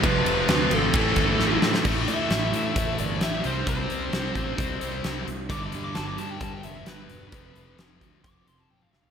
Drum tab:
CC |----------------|x---------------|----------------|----------------|
RD |x-x-x-x-x-x-----|----------------|----------------|----------------|
HH |----------------|--x-x-x-x-x-x-x-|x-x-x-x-x-x-x-x-|x-x-x-x-x-x-x-x-|
SD |----o-----o-o-oo|----o-------o---|----o-------o---|----o-------o---|
T1 |----------------|----------------|----------------|----------------|
T2 |----------------|----------------|----------------|----------------|
FT |----------------|----------------|----------------|----------------|
BD |o-------o-o-----|o-------o-------|o-----o-o-------|o-------o-------|

CC |----------------|
RD |----------------|
HH |x-x-x-x-x-x-----|
SD |----o---------o-|
T1 |------------o---|
T2 |-------------o--|
FT |---------------o|
BD |o-----o-o-------|